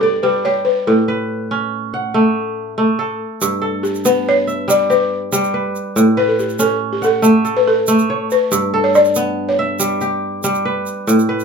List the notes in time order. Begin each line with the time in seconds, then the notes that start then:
Already playing: G2 G3 B3 G4 E5
0.01 A4 D5
0.23 G3 B4
0.45 G4 C#5
0.65 B4
0.87 A2 A4
1.08 B4
1.51 C#4
1.94 F#5
2.14 A3
2.78 A3
2.99 A4
3.41 G2, shaker
3.62 A4
3.83 G4, shaker
3.95 shaker
4.05 B3 B4, shaker
4.29 C#5
4.47 E5, shaker
4.68 G3 D5, shaker
4.90 G4 B4, shaker
5.32 G3 G4, shaker
5.44 shaker
5.54 B4
5.76 shaker
5.96 A2, shaker
6.17 B4
6.24 B4
6.28 A4
6.39 G4, shaker
6.50 shaker
6.59 C#4 A4, shaker
6.93 G4
7.02 A4 F#5, shaker
7.22 A3, shaker
7.45 A4, shaker
7.57 B4
7.68 A4
7.87 A3, shaker
7.99 shaker
8.10 C#5
8.31 B4, shaker
8.52 G2, shaker
8.74 A4
8.84 C#5
8.95 D5, shaker
9.05 shaker
9.15 B3, shaker
9.49 C#5
9.59 E5
9.79 G3, shaker
10.01 G4, shaker
10.44 G3, shaker
10.55 shaker
10.65 B4
10.86 shaker
11.07 A2, shaker
11.19 shaker
11.29 B4
11.40 shaker